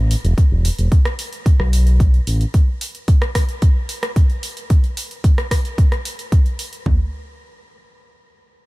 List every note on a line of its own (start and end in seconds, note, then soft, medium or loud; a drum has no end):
0.00 0.14 A1 loud
0.11 open hi-hat loud
0.24 0.37 E1 medium
0.24 closed hi-hat soft
0.38 kick loud
0.38 closed hi-hat medium
0.52 0.68 E1 medium
0.65 open hi-hat medium
0.79 0.87 E1 medium
0.79 closed hi-hat soft
0.92 kick loud
0.92 closed hi-hat medium
1.05 cross-stick medium
1.05 closed hi-hat soft
1.19 open hi-hat medium
1.33 closed hi-hat soft
1.46 kick loud
1.46 closed hi-hat medium
1.60 2.19 B1 medium
1.60 cross-stick medium
1.73 open hi-hat medium
1.87 closed hi-hat soft
2.00 kick loud
2.00 closed hi-hat medium
2.14 closed hi-hat soft
2.27 2.44 A1 medium
2.27 open hi-hat medium
2.41 closed hi-hat soft
2.54 kick medium
2.54 closed hi-hat medium
2.81 open hi-hat medium
2.95 closed hi-hat soft
3.08 kick loud
3.08 closed hi-hat medium
3.22 cross-stick medium
3.22 closed hi-hat soft
3.35 kick medium
3.35 cross-stick medium
3.35 open hi-hat loud
3.49 closed hi-hat soft
3.62 kick loud
3.62 closed hi-hat medium
3.89 open hi-hat medium
4.03 cross-stick medium
4.03 closed hi-hat soft
4.16 kick loud
4.16 closed hi-hat medium
4.30 closed hi-hat soft
4.43 open hi-hat medium
4.57 closed hi-hat soft
4.70 kick loud
4.70 closed hi-hat medium
4.84 closed hi-hat soft
4.97 open hi-hat medium
5.11 closed hi-hat soft
5.24 kick loud
5.24 closed hi-hat medium
5.38 cross-stick medium
5.38 closed hi-hat soft
5.51 kick medium
5.51 cross-stick medium
5.51 open hi-hat loud
5.65 closed hi-hat soft
5.78 kick loud
5.78 closed hi-hat medium
5.92 cross-stick medium
5.92 closed hi-hat soft
6.05 open hi-hat medium
6.19 closed hi-hat soft
6.32 kick loud
6.32 closed hi-hat medium
6.46 closed hi-hat soft
6.59 open hi-hat medium
6.73 closed hi-hat soft
6.86 kick medium
6.86 floor tom medium